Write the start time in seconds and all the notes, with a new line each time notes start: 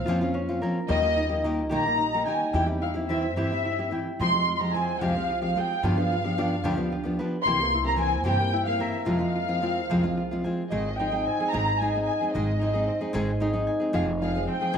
Already playing: A#3 C4 F5
0.06 F2 A#2 F3 C4 C#4 F4
0.21 C4 C#4 F4
0.34 C#4
0.49 C4 C#4 F4
0.62 F3 C4 C#4 F4 A#4
0.88 D#2 D#3 G3 A#3 D#4 G4 D#5
1.02 A#3 D#4 G4
1.16 D#4
1.29 A#3 D#4 G4
1.43 D#3 A#3 D#4 G4
1.69 A#1 D#3 A#3 D#4 G4 A#5
1.85 A#3 D#4 G4
1.98 D#4
2.14 A#3 D#4 G4
2.25 D#3 A#3 D#4 G4 G5 G#5
2.53 E2 E3 G3 C4 E4 G4 G5
2.66 C4 E4 G4
2.82 E4 F5
2.94 C4 E4 G4
3.08 E3 C4 E4 G4 E5
3.36 G2 E3 C4 E4 G4 E5
3.52 C4 E4 G4
3.65 E4
3.79 C4 E4 G4
3.91 E3 C4 E4 G4 G5
4.19 F2 C3 F3 G#3 C4 G4 C6
4.33 F3 G#3 C4 G4
4.47 F4
4.56 C6
4.60 F3 G#3 C4 G4 A#5
4.73 F3 G#3 C4 G4 G#5
5.01 C2 F2 C3 F3 G#3 C4 G4 F5
5.16 G#3 C4 G4
5.30 F4
5.42 F3 G#3 C4 G4 F5
5.56 F3 G#3 C4 G4 G#4 G5
5.83 G2 D3 F3 B3 D4 G4 F5
5.97 F3 B3 D4 G4
6.12 F4
6.24 F3 B3 D4 G4
6.38 F3 B3 D4 G4
6.64 D2 G2 D3 F3 B3 D4 G4
6.76 F3 B3 D4 G4
6.92 F4
7.04 F3 B3 D4 G4
7.19 F3 B3 D4 G4 B4
7.43 C2 C3 E3 A#3 C4 C6
7.47 A#3 G4
7.59 A#3 C4 G4
7.74 E4
7.84 A#3 C4 G4 A#5
7.96 E3 A#3 C4 G4 G#5
8.24 G2 C3 E3 A#3 C4 G4 G5
8.38 A#3 C4 G4
8.53 E4
8.65 A#3 C4 G4 F5
8.79 E3 A#3 C4 G4 A#4 E5
9.05 F2 C3 F3 G#3 C4 F4 F5
9.19 F3 G#3 C4 F4
9.35 F4
9.48 F3 G#3 C4 F4
9.61 F3 G#3 C4 F4
9.90 C2 F2 C3 F3 G#3 C4 F4 G#4
10.04 F3 G#3 C4 F4
10.17 F4
10.31 F3 G#3 C4 F4
10.44 F3 G#3 C4 F4 G#5
10.70 G#1 G#2 D#3 G#3 C4 D#4 G#4 D#5
10.98 G#3 C4 D#4 G#4 G5
11.12 G#3 C4 D#4 G#4
11.25 C4 G#5
11.40 G#3 C4 D#4 G#4
11.51 G#1 G#2 D#3 G#3 C4 D#4 G#4 A#5
11.79 G#3 C4 D#4 G#4 G#5
11.95 G#3 C4 D#4 G#4
12.05 G#5
12.21 G#3 C4 D#4 G#4
12.33 G#1 G#2 D#3 G#3 C4 D#4 G#4 D#5
12.59 G#3 C4 D#4 G#4
12.73 G#3 C4 D#4 G#4
12.87 C4
13.01 G#3 C4 D#4 G#4
13.13 G#1 G#2 D#3 G#3 C4 D#4 G#4
13.40 G#3 C4 D#4 G#4
13.53 G#3 C4 D#4 G#4
13.67 G#5
13.80 G#3 C4 D#4 G#4
13.93 F1 F2 C3 F3 G#3 C4 G#4 F5
14.22 F3 G#3 C4 F4 G#4 F5
14.35 F3 G#3 C4 G#4
14.47 C4 G5
14.61 F3 G#3 C4 G#4
14.73 F2 C3 F3 G#3 C4 G#4